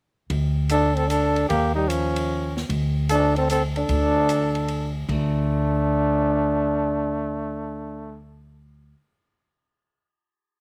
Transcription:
0.30 upright bass D2, ride
0.69 trombone D4, trumpet A4, hi-hat pedal, ride
0.96 trombone C4, trumpet A4, ride
1.08 trombone D4, trumpet A4, hi-hat pedal, ride
1.36 ride
1.48 upright bass D#2, trombone A#3, trumpet G4, ride
1.74 trombone G3, trumpet D#4
1.88 trombone F3, trumpet C#4, hi-hat pedal, ride
2.16 ride
2.57 snare
2.69 upright bass D2, ride
3.09 trombone D4, trumpet A4, hi-hat pedal, ride
3.36 trombone C4, trumpet A4, ride
3.50 trombone C4, trumpet A4, hi-hat pedal, ride
3.76 trombone D4, trumpet A4, ride
3.89 upright bass D2, ride
4.29 hi-hat pedal, ride
4.55 ride
4.68 ride
5.09 upright bass D2, trumpet A3, trombone D4, kick, crash

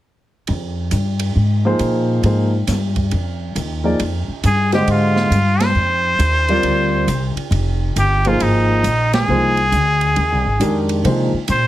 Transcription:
0.47 upright bass F2, ride
0.91 upright bass G2, hi-hat pedal, ride
1.19 ride
1.35 upright bass G#2
1.65 grand piano F3 A#3 D#4 G#4 C5
1.79 upright bass A#2, hi-hat pedal, ride
2.23 upright bass G#2, grand piano F3 A#3 D#4 G#4 C5, ride
2.67 upright bass G2, snare, hi-hat pedal, ride
2.96 kick, ride
3.11 upright bass F2, ride
3.55 upright bass D#2, hi-hat pedal, ride
3.84 grand piano F3 A#3 D#4 G#4 D5
3.99 upright bass F2, ride
4.28 muted upright bass stroke
4.44 upright bass G2, muted trumpet G#4, hi-hat pedal, ride
4.72 grand piano D3 G#3 G4 C5 D#5, muted trumpet G4, snare, ride
4.87 upright bass G#2, muted trumpet F4, ride
5.16 snare
5.30 upright bass G2, hi-hat pedal, ride
5.60 muted trumpet C5, snare, ride
5.75 upright bass F2
6.19 upright bass D#2, hi-hat pedal, ride
6.48 grand piano G3 C4 F4 A#4 D5, ride
6.63 upright bass D2, ride
7.07 upright bass C2, hi-hat pedal, ride
7.36 muted upright bass stroke, ride
7.51 upright bass F1, ride
7.96 upright bass G1, muted trumpet G4, hi-hat pedal, ride
8.25 grand piano F3 A#3 D#4 G#4 C5, muted trumpet F4, ride
8.40 upright bass G#1, muted trumpet D#4, ride
8.83 upright bass A#1, hi-hat pedal, ride
9.13 muted trumpet G#4, snare, ride
9.28 upright bass C2, grand piano F3 A#3 D#4 G#4 C5
9.57 ride
9.72 upright bass D2, hi-hat pedal, ride
10.01 ride
10.16 upright bass D#2, ride
10.32 upright bass C2
10.45 upright bass G#1
10.60 upright bass F2, grand piano D#3 G#3 D4 G4 A#4, hi-hat pedal, ride
10.89 ride
11.04 upright bass C3, grand piano F3 A#3 D#4 G#4 C5, ride
11.33 muted upright bass stroke
11.48 upright bass A#2, muted trumpet C5, hi-hat pedal, ride

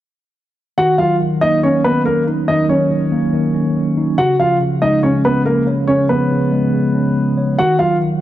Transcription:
0.78 tine electric piano D#3, grand piano F#4 F#5
0.98 tine electric piano F#3, grand piano F4 F5
1.20 tine electric piano D#3
1.41 tine electric piano A#3, grand piano D#4 D#5
1.63 tine electric piano D#3, grand piano C#4 C#5
1.84 grand piano B3 B4, tine electric piano C#4
2.05 grand piano A#3 A#4
2.27 tine electric piano D#4
2.48 tine electric piano D#3, grand piano D#4 D#5
2.69 tine electric piano F#3, grand piano C#4 C#5
2.90 tine electric piano D#3
3.12 tine electric piano A#3
3.33 tine electric piano D#3
3.55 tine electric piano C#4
3.97 tine electric piano D#4
4.18 tine electric piano C#3, grand piano F#4 F#5
4.40 tine electric piano F3, grand piano F4 F5
4.60 tine electric piano C#3
4.82 tine electric piano G#3, grand piano D#4 D#5
5.03 tine electric piano C#3, grand piano C#4 C#5
5.25 grand piano B3 B4, tine electric piano C#4
5.46 grand piano A#3 A#4
5.67 tine electric piano C#5
5.88 tine electric piano C#3, grand piano C#4 C#5
6.09 tine electric piano F3, grand piano B3 B4
6.31 tine electric piano C#3
6.52 tine electric piano G#3
6.74 tine electric piano C#3
6.95 tine electric piano C#4
7.37 tine electric piano C#5
7.59 tine electric piano D#3, grand piano F#4 F#5
7.79 tine electric piano F#3, grand piano F4 F5
8.01 tine electric piano D#3

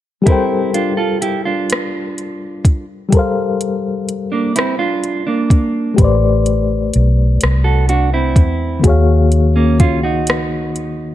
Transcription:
0.22 reed electric piano G3 G4 A4
0.26 clean electric guitar C4 E4, reed electric piano A#4 C5, kick, closed hi-hat
0.32 reed electric piano G5
0.74 clean electric guitar D4 F4, closed hi-hat
0.97 clean electric guitar F4 A4
1.22 clean electric guitar E4 G4, closed hi-hat
1.45 clean electric guitar D4 F4
1.70 cross-stick, closed hi-hat
2.18 closed hi-hat
2.65 kick, closed hi-hat
3.09 reed electric piano G3 G4 A4, kick, closed hi-hat
3.15 reed electric piano A#4 C5
3.19 reed electric piano F5
3.61 closed hi-hat
4.09 closed hi-hat
4.32 clean electric guitar A#3 D4
4.56 clean electric guitar C4 E4, cross-stick, closed hi-hat
4.79 clean electric guitar D4 F4
5.04 closed hi-hat
5.27 clean electric guitar A#3 D4
5.50 kick, closed hi-hat
5.94 reed electric piano A3 G4, kick
5.98 fingered electric bass A1, reed electric piano B4 C5, closed hi-hat
6.04 reed electric piano D5
6.46 closed hi-hat
6.94 fingered electric bass B1, closed hi-hat
7.41 fingered electric bass C2, cross-stick, closed hi-hat
7.64 clean electric guitar F#4 A4
7.89 clean electric guitar D4 F#4, closed hi-hat
8.14 clean electric guitar C4 E4
8.36 fingered electric bass E2, kick, closed hi-hat
8.79 reed electric piano D#3 A#3
8.83 fingered electric bass D#2, reed electric piano F#4 G#4, kick, closed hi-hat
8.87 reed electric piano C#5 F5
9.32 closed hi-hat
9.56 clean electric guitar A#3 C#4
9.80 fingered electric bass C#2, clean electric guitar C#4 F4, kick, closed hi-hat
10.03 clean electric guitar D#4 F#4
10.27 cross-stick, closed hi-hat
10.76 fingered electric bass D#2, closed hi-hat

